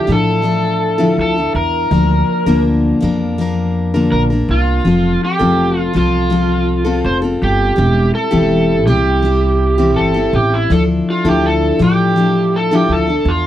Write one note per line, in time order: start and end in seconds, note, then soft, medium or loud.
0.00 0.12 G4 medium
0.07 1.14 A2 medium
0.07 0.41 F3 soft
0.07 0.42 D4 medium
0.07 0.43 E4 medium
0.07 0.44 A4 medium
0.12 1.16 A4 medium
0.42 0.99 F3 medium
0.42 0.98 D4 medium
0.42 0.97 E4 medium
0.42 0.97 A4 medium
0.98 1.37 D3 medium
0.98 1.36 F3 medium
0.98 1.36 D4 medium
0.98 1.36 E4 medium
0.98 1.36 A4 medium
1.18 1.48 D2 medium
1.18 1.54 A4 loud
1.38 1.92 D4 soft
1.38 1.92 E4 soft
1.55 1.85 E2 medium
1.55 2.61 A#4 medium
1.91 2.21 D2 medium
1.91 2.46 F3 soft
1.91 2.46 A#3 medium
1.91 2.46 D4 soft
1.91 2.45 A#4 medium
2.46 2.92 D2 medium
2.46 3.02 D3 soft
2.46 2.99 F3 medium
2.46 3.01 A#3 medium
2.46 3.02 D4 medium
2.46 3.01 A#4 medium
3.01 4.08 F2 medium
3.01 3.37 F3 medium
3.01 3.38 A#3 medium
3.01 3.39 D4 medium
3.01 3.39 A#4 medium
3.38 3.93 F3 medium
3.38 3.93 A#3 medium
3.38 3.93 D4 medium
3.38 3.93 A#4 medium
3.94 4.31 D3 soft
3.94 4.31 F3 soft
3.94 4.31 A#3 medium
3.94 4.30 D4 medium
3.94 4.29 A#4 medium
4.12 4.42 A#1 medium
4.12 4.22 A#4 medium
4.30 4.85 A#3 soft
4.30 4.86 D4 soft
4.30 4.85 A#4 soft
4.48 4.78 C2 medium
4.48 5.24 F4 medium
4.85 5.15 F1 medium
4.85 5.40 F3 soft
4.85 5.39 C4 soft
4.85 5.38 F4 medium
4.85 5.38 A4 medium
5.24 5.79 G4 medium
5.39 5.85 F1 medium
5.39 5.92 F3 medium
5.39 5.93 C4 medium
5.39 5.94 F4 medium
5.39 5.94 A4 medium
5.79 5.97 F4 medium
5.94 7.00 C2 medium
5.94 6.29 F3 medium
5.94 6.30 C4 medium
5.94 6.31 F4 medium
5.94 7.02 F4 medium
5.94 6.31 A4 medium
6.30 6.85 F3 medium
6.30 6.85 C4 medium
6.30 6.85 F4 medium
6.30 6.83 A4 medium
6.85 7.23 F3 soft
6.85 7.23 C4 medium
6.85 7.23 F4 medium
6.85 7.21 A4 medium
7.04 7.34 F1 medium
7.04 7.16 C5 medium
7.22 7.75 C4 soft
7.22 7.78 F4 soft
7.22 7.77 A4 soft
7.42 7.72 G1 medium
7.42 8.14 G4 medium
7.76 8.08 E1 medium
7.76 8.31 G3 soft
7.76 8.31 C4 soft
7.76 8.30 E4 medium
7.76 8.30 G4 medium
8.15 8.84 A4 loud
8.31 8.87 E1 medium
8.31 8.88 E3 medium
8.31 8.86 G3 medium
8.31 8.87 C4 medium
8.31 8.87 E4 medium
8.31 8.87 G4 medium
8.87 9.97 C2 medium
8.87 9.21 G3 medium
8.87 9.23 C4 medium
8.87 9.24 E4 medium
8.87 10.00 G4 loud
8.87 9.25 G4 medium
9.22 9.78 G3 medium
9.22 9.78 C4 soft
9.22 9.77 E4 medium
9.22 9.77 G4 medium
9.78 10.16 E3 soft
9.78 10.16 G3 medium
9.78 10.16 C4 medium
9.78 10.15 E4 medium
9.78 10.13 G4 medium
9.96 10.27 G1 medium
9.96 10.34 A4 medium
10.14 10.71 C4 soft
10.14 10.71 E4 soft
10.14 10.70 G4 soft
10.33 10.63 A1 medium
10.33 10.53 G4 medium
10.54 10.71 E4 medium
10.70 11.00 D2 medium
10.70 11.25 F3 soft
10.70 11.25 D4 medium
10.70 11.24 E4 medium
10.70 10.82 A4 medium
10.70 11.24 A4 medium
11.10 11.27 F4 medium
11.25 11.70 D2 medium
11.25 11.81 D3 soft
11.25 11.78 F3 medium
11.25 11.79 D4 medium
11.25 11.80 E4 medium
11.25 11.46 G4 medium
11.25 11.80 A4 medium
11.46 11.79 A4 medium
11.79 12.85 A2 medium
11.79 12.15 F3 medium
11.79 12.16 D4 medium
11.79 12.17 E4 medium
11.79 12.17 A4 medium
11.84 12.57 G4 medium
12.16 12.71 F3 medium
12.16 12.71 D4 medium
12.16 12.71 E4 medium
12.16 12.70 A4 medium
12.56 12.73 A4 medium
12.71 13.09 D3 medium
12.71 13.09 F3 medium
12.71 13.08 D4 medium
12.71 13.09 E4 medium
12.71 12.92 G4 medium
12.71 13.06 A4 medium
12.89 13.19 D2 medium
12.89 13.29 A4 medium
13.07 13.47 D4 soft
13.07 13.47 A4 soft
13.25 13.47 E2 medium
13.25 13.47 F4 medium